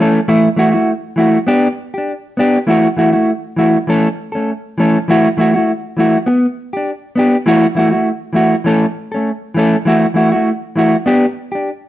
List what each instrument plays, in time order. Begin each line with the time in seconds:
0.00 clean electric guitar E3 A3 C#4 A4
0.28 clean electric guitar E3 A3 E4, muted clean electric guitar stroke
0.56 clean electric guitar E3 A3 E4 F#4
0.72 clean electric guitar A3 E4 F#4
1.16 clean electric guitar E3 A3 E4 F#4
1.47 clean electric guitar B3 D4 G4
1.94 clean electric guitar D4 G4
2.37 clean electric guitar B3 D4 G4
2.67 clean electric guitar E3 A3 E4 F#4
2.97 clean electric guitar E3 A3 E4 F#4
3.12 clean electric guitar A3 E4 F#4
3.57 clean electric guitar E3 A3 E4 F#4
3.87 clean electric guitar E3 A3 C#4 A4
4.32 clean electric guitar C#4 A4
4.36 clean electric guitar A3
4.78 clean electric guitar E3 A3 C#4 A4
5.08 clean electric guitar E3 A3 E4 F#4
5.37 clean electric guitar E3 A3 E4 F#4
5.54 clean electric guitar A3 E4 F#4
5.97 clean electric guitar E3 A3 E4 F#4
6.26 clean electric guitar B3, muted clean electric guitar stroke
6.73 clean electric guitar D4 G4
7.16 clean electric guitar B3 D4 G4
7.46 clean electric guitar E3 A3 E4 F#4
7.75 clean electric guitar E3 A3 E4 F#4
7.91 clean electric guitar A3 E4 F#4
8.33 clean electric guitar E3 A3 E4 F#4
8.64 clean electric guitar E3 A3 C#4 A4
9.12 clean electric guitar C#4 A4
9.16 clean electric guitar A3
9.54 clean electric guitar E3 A3 C#4
9.59 clean electric guitar A4
9.85 clean electric guitar E3 A3 E4 F#4
10.14 clean electric guitar E3 A3 E4 F#4
10.32 clean electric guitar E4 F#4
10.36 clean electric guitar A3
10.76 clean electric guitar E3 A3 E4 F#4
11.06 clean electric guitar B3 D4 G4
11.52 clean electric guitar D4 G4